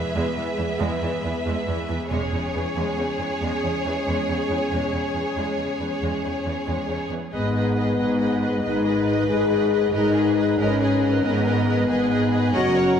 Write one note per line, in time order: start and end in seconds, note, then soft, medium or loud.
0.00 2.08 G#3 medium
0.00 2.07 B3 medium
0.00 2.10 G#4 soft
0.00 2.07 B4 soft
0.00 2.07 E5 soft
0.14 0.24 E2 medium
0.14 0.35 G#3 medium
0.37 0.45 E2 soft
0.37 0.45 E3 soft
0.58 0.66 E2 soft
0.58 0.66 E3 soft
0.79 0.88 E2 medium
0.79 1.00 G#3 medium
1.01 1.10 E2 soft
1.01 1.09 E3 soft
1.23 1.32 E2 soft
1.23 1.31 E3 soft
1.46 1.54 E2 medium
1.46 1.66 G#3 medium
1.68 1.76 E2 soft
1.68 1.76 E3 soft
1.89 1.97 E2 soft
1.89 1.97 E3 soft
2.11 2.31 E1 medium
2.11 2.19 E2 medium
2.11 7.07 G#3 medium
2.11 2.31 G#3 medium
2.11 7.07 C#4 medium
2.11 7.09 G#4 medium
2.11 7.09 C#5 medium
2.33 2.41 E2 soft
2.33 2.41 C#3 soft
2.54 2.62 E2 soft
2.54 2.63 E3 soft
2.76 2.84 E2 medium
2.76 2.97 G#3 soft
2.97 3.05 E2 soft
2.97 3.07 C#3 soft
3.19 3.27 E2 soft
3.19 3.29 E3 soft
3.42 3.50 E2 medium
3.42 3.62 G#3 soft
3.63 3.71 E2 soft
3.63 3.73 C#3 soft
3.85 3.93 E2 soft
3.85 3.94 E3 soft
4.07 4.15 E2 soft
4.07 4.27 G#3 soft
4.29 4.37 E2 soft
4.29 4.37 C#3 soft
4.50 4.58 E2 soft
4.50 4.58 E3 soft
4.71 4.92 E1 soft
4.71 4.80 E2 soft
4.71 4.92 G#3 soft
4.93 5.01 E2 soft
4.93 5.02 C#3 soft
5.15 5.23 E2 soft
5.15 5.23 E3 soft
5.36 5.44 E2 soft
5.36 5.57 G#3 soft
5.58 5.66 E2 soft
5.58 5.67 C#3 soft
5.80 5.88 E2 soft
5.80 5.89 E3 soft
6.02 6.10 E2 soft
6.02 6.22 G#3 soft
6.24 6.32 E2 soft
6.24 6.32 C#3 soft
6.46 6.54 E2 soft
6.46 6.54 E3 soft
6.67 6.75 E2 soft
6.67 6.87 G#3 soft
6.89 6.97 E2 soft
6.89 6.98 C#3 soft
7.10 7.18 E2 soft
7.10 7.19 E3 soft
7.32 7.90 G#1 medium
7.32 7.90 G#2 soft
7.32 12.50 D#3 soft
7.32 12.50 G#3 soft
7.32 8.59 B3 medium
7.32 7.53 G#4 soft
7.32 7.53 B4 soft
7.32 7.54 D#5 soft
7.54 7.75 G#4 soft
7.54 7.76 B4 soft
7.54 7.74 D#5 soft
7.75 7.97 G#4 soft
7.75 7.97 B4 soft
7.75 7.95 D#5 soft
7.97 8.56 G#1 soft
7.97 8.55 G#2 soft
7.97 8.19 G#4 soft
7.97 8.19 B4 soft
7.97 8.16 D#5 soft
8.18 8.40 G#4 soft
8.18 8.40 B4 soft
8.18 8.40 D#5 soft
8.41 8.61 G#4 soft
8.41 8.61 B4 soft
8.41 8.61 D#5 soft
8.62 9.21 G#1 soft
8.62 9.21 G#2 medium
8.62 9.29 D#4 medium
8.62 8.84 G#4 soft
8.62 8.84 B4 soft
8.62 9.89 B4 soft
8.62 8.83 D#5 soft
8.84 9.05 G#4 soft
8.84 9.06 B4 soft
8.84 9.04 D#5 soft
9.06 9.27 G#4 soft
9.06 9.27 B4 soft
9.06 9.27 D#5 soft
9.28 9.86 G#1 medium
9.28 9.86 G#2 soft
9.28 9.49 G#4 soft
9.28 9.92 G#4 medium
9.28 9.49 B4 soft
9.28 9.49 D#5 soft
9.50 9.71 G#4 soft
9.50 9.71 B4 soft
9.50 9.70 D#5 soft
9.71 9.92 G#4 soft
9.71 9.92 B4 soft
9.71 9.92 D#5 soft
9.93 10.51 G#1 medium
9.93 10.51 G#2 soft
9.93 10.58 D#4 medium
9.93 10.14 G#4 soft
9.93 10.14 A#4 medium
9.93 10.14 B4 soft
9.93 10.14 D#5 soft
10.14 10.36 G#4 soft
10.14 10.36 B4 soft
10.14 10.35 D#5 soft
10.36 10.58 G#4 soft
10.36 10.58 B4 medium
10.36 10.58 B4 soft
10.36 10.58 D#5 soft
10.59 11.17 G#1 medium
10.59 11.16 G#2 medium
10.59 11.24 C#4 medium
10.59 10.79 G#4 soft
10.59 10.80 A#4 medium
10.59 10.79 B4 soft
10.59 10.80 D#5 soft
10.80 11.01 G#4 soft
10.80 11.02 G#4 soft
10.80 11.01 B4 soft
10.80 11.01 D#5 soft
11.02 11.22 G#4 soft
11.02 11.89 A#4 medium
11.02 11.22 B4 soft
11.02 11.23 D#5 soft
11.23 11.82 G#1 medium
11.23 11.81 G#2 medium
11.23 12.54 B3 medium
11.23 11.44 G#4 soft
11.23 11.44 B4 soft
11.23 11.45 D#5 soft
11.45 11.65 G#4 soft
11.45 11.65 B4 soft
11.45 11.66 D#5 soft
11.67 11.88 G#4 soft
11.67 11.88 B4 soft
11.67 11.89 D#5 soft
11.88 12.47 G#1 medium
11.88 12.47 G#2 soft
11.88 12.53 G#4 medium
11.88 12.09 G#4 medium
11.88 12.09 B4 soft
11.88 12.10 D#5 soft
12.10 12.31 G#4 soft
12.10 12.31 B4 soft
12.10 12.32 D#5 soft
12.32 12.54 G#4 medium
12.32 12.54 B4 medium
12.32 12.54 D#5 soft
12.54 13.00 F#1 medium
12.54 13.00 F#2 medium
12.54 13.00 C#3 medium
12.54 13.00 C#4 medium
12.54 13.00 F#4 medium
12.54 12.74 A#4 soft
12.54 12.74 C#5 medium
12.54 12.76 D#5 medium
12.54 12.74 F#5 medium
12.75 12.96 A#4 soft
12.75 12.96 C#5 soft
12.75 12.98 C#5 medium
12.75 12.96 F#5 soft